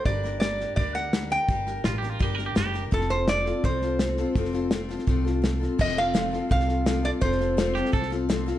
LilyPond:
<<
  \new Staff \with { instrumentName = "Resonator guitar played with a steel bar" } { \time 4/4 \key f \mixolydian \tempo 4 = 167 d''4 d''4 d''8 fis''4 g''8~ | g''4 r2. | a'8 c''8 d''4 c''2~ | c''2. r4 |
ees''8 f''4. f''4. d''8 | c''2. r4 | }
  \new Staff \with { instrumentName = "Clean electric guitar" } { \time 4/4 \key f \mixolydian r1 | r4 \tuplet 3/2 { f'8 g'8 f'8 g'8 bes'8 g'8 } g'8. r16 | r1 | r1 |
r1 | r4. g'8 a'8 r4. | }
  \new Staff \with { instrumentName = "Steel-string acoustic guitar" } { \time 4/4 \key f \mixolydian <g d' g' bes'>8 <d' g' bes'>8 <g d' g' bes'>8 <d' g' bes'>8 <g d' g' bes'>8 <d' g' bes'>8 <g d' g' bes'>8 <d' g' bes'>8 | <g d' g' bes'>8 <d' g' bes'>8 <g d' g' bes'>8 <d' g' bes'>8 <g d' g' bes'>8 <d' g' bes'>8 <g d' g' bes'>8 <d' g' bes'>8 | <f a c' f' a'>8 <c' f' a'>8 <a c' f' a'>8 <c' f' a'>8 <f a c' f' a'>8 <c' f' a'>8 <a c' f' a'>8 <c' f' a'>8 | <f a c' f' a'>8 <c' f' a'>8 <a c' f' a'>8 <c' f' a'>8 <f a c' f' a'>8 <c' f' a'>8 <a c' f' a'>8 <c' f' a'>8 |
<f a c' f' a'>8 <c' f' a'>8 <f a c' f' a'>8 <c' f' a'>8 <a c' f' a'>8 <c' f' a'>8 <f a c' f' a'>8 <c' f' a'>8 | <f a c' f' a'>8 <c' f' a'>8 <f a c' f' a'>8 <c' f' a'>8 <a c' f' a'>8 <c' f' a'>8 <f a c' f' a'>8 <c' f' a'>8 | }
  \new Staff \with { instrumentName = "Upright bass" } { \clef bass \time 4/4 \key f \mixolydian g,,2 d,2 | g,,4 a,,4 g,,4 fis,,4 | f,,2 c,2 | f,,2 c,2 |
f,,2 c,2 | f,,2 c,2 | }
  \new DrumStaff \with { instrumentName = "Drums" } \drummode { \time 4/4 <bd sn>8 sn8 <hhp sn>8 sn8 <bd sn>8 sn8 <hhp sn>8 sn8 | <bd sn>8 sn8 <hhp sn>8 sn8 <bd sn>8 sn8 <hhp sn>8 sn8 | <bd sn>16 sn16 sn8 <hhp sn>8 sn8 <bd sn>8 sn8 <hhp sn>8 sn8 | <bd sn>16 sn16 sn8 <hhp sn>8 sn16 sn16 <bd sn>8 sn8 <hhp sn>8 sn8 |
<cymc bd sn>16 sn16 sn8 <hhp sn>8 sn8 <bd sn>16 sn16 sn8 <hhp sn>8 sn8 | <bd sn>16 sn16 sn8 <hhp sn>8 sn16 sn16 <bd sn>16 sn16 sn8 <hhp sn>8 sn8 | }
>>